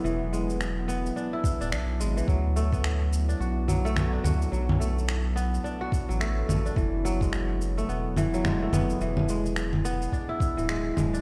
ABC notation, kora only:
X:1
M:4/4
L:1/16
Q:"Swing 16ths" 1/4=107
K:Emix
V:1 name="Kora"
E,2 G,4 B, z D E z D D z G, E, | F, z A, B,4 D F z F, A, B, D F z | F,2 A,4 B, z D F2 F, A,2 A, D | E, z F, G,4 A, B, z E, F, G, A, B, z |
E,2 G,4 B, z D E2 E, G,2 G, D |]